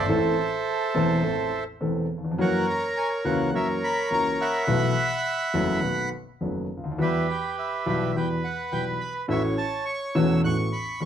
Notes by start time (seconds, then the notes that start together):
Already playing: A4 C5 E5
0.02 G#1
0.09 A1 A2 E3 A3 C4 A4
0.94 E1 E2 E3 A3 C4 A4
1.23 A1 A2 E3 A3 C4 A4
1.81 E1 E2 E3 A3 C4 A4
2.17 D#2
2.25 E2
2.31 F2
2.38 F#2 E3 F#3 A#3 C#4 F#4 A#4 C#5 F#5
2.70 A#5
2.97 G#5
3.25 C#2 C#3 E3 A#3 C#4 F#4 F#5
3.53 F#2 E3 F#3 A#3 C#4 F#4 A#4 C#5 E5
3.84 B5
4.10 C#2 C#3 E3 A#3 C#4 F#4 A#5
4.41 E5 F#5 B5
4.67 B1 B2 E3 A3 B3 F#4
5.54 F#1 F#2 E3 A3 B3 F#4
5.83 B1 B2 D#3 A3 B3 F#4
6.41 F#1 F#2 D#3 A3 B3 F#4
6.77 C#2
6.84 D2
6.91 D#2
6.98 E2 E3 G3 B3 F#4 G4 B4 E5
7.30 G5
7.59 E5
7.86 B1 B2 E3 G3 B3 F#4 E5
8.15 E2 E3 G3 B3 F#4 B4 G5
8.44 F#5
8.72 B1 B2 E3 G3 B3 F#4 G5
9.01 B5
9.28 A1 A2 E3 A3 C#4 F#4 C#5 E5
9.58 A5
9.86 C#6
10.15 E1 E2 E3 A3 C#4 F#4 E6
10.43 A1 A2 E3 A3 C#4 F#4 C#6 F#6
10.73 B5
11.00 E1 E2 E3 A3 C#4 F#4 C#6